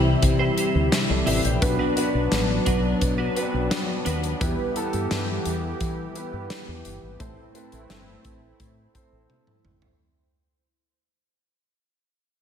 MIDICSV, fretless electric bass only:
0, 0, Header, 1, 2, 480
1, 0, Start_track
1, 0, Tempo, 697674
1, 1115, Time_signature, 4, 2, 24, 8
1, 8543, End_track
2, 0, Start_track
2, 0, Title_t, "Fretless electric bass"
2, 0, Program_c, 0, 35
2, 0, Note_on_c, 0, 36, 80
2, 94, Note_off_c, 0, 36, 0
2, 157, Note_on_c, 0, 48, 95
2, 336, Note_off_c, 0, 48, 0
2, 515, Note_on_c, 0, 38, 81
2, 605, Note_off_c, 0, 38, 0
2, 756, Note_on_c, 0, 36, 82
2, 845, Note_off_c, 0, 36, 0
2, 874, Note_on_c, 0, 33, 79
2, 964, Note_off_c, 0, 33, 0
2, 995, Note_on_c, 0, 34, 80
2, 1085, Note_off_c, 0, 34, 0
2, 1115, Note_on_c, 0, 35, 98
2, 1205, Note_off_c, 0, 35, 0
2, 1475, Note_on_c, 0, 35, 75
2, 1565, Note_off_c, 0, 35, 0
2, 1594, Note_on_c, 0, 33, 86
2, 1774, Note_off_c, 0, 33, 0
2, 1834, Note_on_c, 0, 35, 82
2, 2014, Note_off_c, 0, 35, 0
2, 2075, Note_on_c, 0, 47, 92
2, 2255, Note_off_c, 0, 47, 0
2, 2434, Note_on_c, 0, 35, 78
2, 2524, Note_off_c, 0, 35, 0
2, 2794, Note_on_c, 0, 39, 83
2, 2974, Note_off_c, 0, 39, 0
2, 3034, Note_on_c, 0, 40, 100
2, 3124, Note_off_c, 0, 40, 0
2, 3395, Note_on_c, 0, 43, 78
2, 3485, Note_off_c, 0, 43, 0
2, 3514, Note_on_c, 0, 43, 80
2, 3694, Note_off_c, 0, 43, 0
2, 3754, Note_on_c, 0, 40, 82
2, 3934, Note_off_c, 0, 40, 0
2, 3996, Note_on_c, 0, 52, 94
2, 4175, Note_off_c, 0, 52, 0
2, 4354, Note_on_c, 0, 43, 79
2, 4444, Note_off_c, 0, 43, 0
2, 4595, Note_on_c, 0, 40, 85
2, 4685, Note_off_c, 0, 40, 0
2, 4715, Note_on_c, 0, 31, 78
2, 4805, Note_off_c, 0, 31, 0
2, 4835, Note_on_c, 0, 32, 74
2, 4925, Note_off_c, 0, 32, 0
2, 4955, Note_on_c, 0, 33, 94
2, 5044, Note_off_c, 0, 33, 0
2, 5316, Note_on_c, 0, 33, 74
2, 5405, Note_off_c, 0, 33, 0
2, 5434, Note_on_c, 0, 31, 81
2, 5614, Note_off_c, 0, 31, 0
2, 5675, Note_on_c, 0, 33, 71
2, 5855, Note_off_c, 0, 33, 0
2, 5917, Note_on_c, 0, 45, 93
2, 6096, Note_off_c, 0, 45, 0
2, 6276, Note_on_c, 0, 33, 80
2, 6365, Note_off_c, 0, 33, 0
2, 6635, Note_on_c, 0, 32, 76
2, 6815, Note_off_c, 0, 32, 0
2, 8543, End_track
0, 0, End_of_file